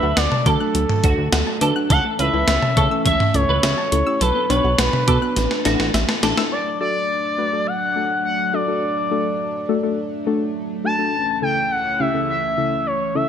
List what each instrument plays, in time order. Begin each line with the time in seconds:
Already playing: analog synth pad F#3 A3 D4, clean electric guitar B4, analog synth lead E5
0.03 analog synth bass D2, synth arpeggio sound F#4
0.17 analog synth bass D2, analog synth lead D5, synth arpeggio sound F#5, snare, closed hi-hat
0.32 synth arpeggio sound A5, mid tom
0.46 analog synth bass D3, synth keys A3 D4 F#4 A4, clean electric guitar A4, analog synth lead A4, synth arpeggio sound D6, kick, closed hi-hat, cowbell
0.60 synth keys A3 D4 F#4 A4, synth arpeggio sound F#6
0.75 analog synth bass D2, synth arpeggio sound F#3, closed hi-hat
0.89 mid tom
1.04 analog synth bass D2, synth keys A3 D4 F#4 A4, synth arpeggio sound D4, clean electric guitar F#4, kick, closed hi-hat
1.18 analog synth bass D2
1.32 analog synth bass D2, synth arpeggio sound F#5, snare, closed hi-hat
1.47 synth arpeggio sound A5
1.61 analog synth bass D2, synth keys A3 D4 F#4 B4, clean electric guitar A4, synth arpeggio sound D6, closed hi-hat
1.76 synth keys A3 D4 F#4 A4, synth arpeggio sound F#6
1.90 analog synth bass C#2, synth arpeggio sound E3, analog synth pad E3 C#4, clean electric guitar A4, analog synth lead F#5, kick, closed hi-hat
2.05 synth arpeggio sound A3
2.19 analog synth bass C#2, synth keys A3 C#4 E4 A4, synth arpeggio sound C#4, clean electric guitar B4, analog synth lead E5, closed hi-hat
2.33 analog synth bass C#2, synth arpeggio sound E4
2.48 analog synth bass C#2, synth arpeggio sound E5, snare, closed hi-hat
2.62 synth arpeggio sound A5, mid tom
2.77 analog synth bass C#3, synth keys A3 C#4 E4 A4, clean electric guitar A4, synth arpeggio sound C#6, kick, closed hi-hat, cowbell
2.91 synth keys A3 C#4 E4 A4, synth arpeggio sound E6
3.06 analog synth bass C#2, synth arpeggio sound E3, clean electric guitar C#5, analog synth lead E5, kick, closed hi-hat
3.20 mid tom
3.34 analog synth bass C#2, synth keys A3 C#4 E4 A4, synth arpeggio sound C#4, analog synth lead C#5, closed hi-hat
3.49 analog synth bass C#2, clean electric guitar B4
3.63 analog synth bass C#2, synth arpeggio sound E5, snare, closed hi-hat
3.78 synth arpeggio sound A5
3.92 analog synth bass C#2, synth keys A3 C#4 E4 A4, synth arpeggio sound C#6, closed hi-hat
4.07 synth keys A3 C#4 E4 G4, synth arpeggio sound E6
4.21 analog synth bass B1, synth arpeggio sound F#3, analog synth pad F#3 B3 D4, clean electric guitar A4, analog synth lead B4, closed hi-hat
4.35 synth arpeggio sound B3
4.50 analog synth bass B1, synth keys B3 D4 F#4 B4, synth arpeggio sound D4, clean electric guitar B4, analog synth lead C#5, closed hi-hat, cowbell
4.64 analog synth bass B1, synth arpeggio sound F#4
4.78 analog synth bass B1, analog synth lead B4, synth arpeggio sound F#5, snare, closed hi-hat
4.93 synth arpeggio sound B5, mid tom
5.08 analog synth bass B2, synth keys B3 D4 F#4 A4, clean electric guitar A4, synth arpeggio sound D6, kick, closed hi-hat
5.22 synth keys B3 D4 F#4 B4, synth arpeggio sound F#6
5.36 analog synth bass A1, synth arpeggio sound E3, analog synth pad E3 A3, snare, closed hi-hat
5.51 snare
5.65 analog synth bass A1, synth keys A3 D4 E4 A4, synth arpeggio sound D4, clean electric guitar F#4, snare, closed hi-hat
5.80 analog synth bass A1, snare
5.94 analog synth bass A1, synth arpeggio sound E5, snare, closed hi-hat
6.09 synth arpeggio sound A5, snare
6.23 analog synth bass A1, synth keys A3 D4 E4 A4, clean electric guitar A4, synth arpeggio sound D6, snare, closed hi-hat
6.37 synth keys A3 D4 E4 A4, synth arpeggio sound E6, snare
6.52 analog synth pad F#3 A3 D4, analog synth lead D5
6.81 synth keys A3 D4 F#4 A4, analog synth lead D5
7.38 synth keys A3 D4 F#4 B4
7.53 synth keys A3 D4 F#4 A4
7.67 analog synth lead F#5
7.96 synth keys A3 D4 F#4 A4
8.25 analog synth lead F#5
8.54 synth keys A3 D4 F#4 A4, analog synth lead D5
8.68 synth keys A3 D4 F#4 A4
9.11 synth keys A3 D4 F#4 A4
9.69 synth keys A3 D4 F#4 A4
9.83 synth keys A3 D4 F#4 A4
10.27 synth keys A3 D4 F#4 A4
10.84 synth keys A3 D4 F#4 A4, analog synth lead A5
10.99 synth keys A3 D4 F#4 A4
11.13 analog synth pad C#2 E3 C#4
11.42 synth keys C#3 A3 C#4 E4 A4, analog synth lead G5
11.71 analog synth lead F#5
12.00 synth keys C#3 A3 C#4 E4 G4, analog synth lead E5
12.14 synth keys C#3 A3 C#4 E4 A4
12.29 analog synth lead E5
12.57 synth keys C#3 A3 C#4 E4 A4
12.87 analog synth lead C#5
13.15 synth keys C#3 A3 C#4 E4 A4, analog synth lead E5